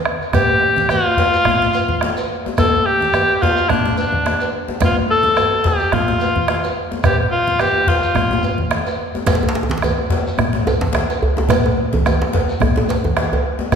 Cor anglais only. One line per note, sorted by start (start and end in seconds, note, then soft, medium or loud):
0.34 0.92 G4 loud
0.90 2.30 F4 loud
2.59 2.87 A4 loud
2.86 3.44 G4 loud
3.42 3.70 F4 medium
3.68 3.97 D4 medium
3.98 4.50 D4 medium
4.85 4.96 F4 medium
5.11 5.69 A4 loud
5.67 5.95 G4 medium
5.94 6.77 F4 medium
7.04 7.17 G4 medium
7.31 7.62 F4 medium
7.61 7.90 G4 loud
7.89 8.72 F4 medium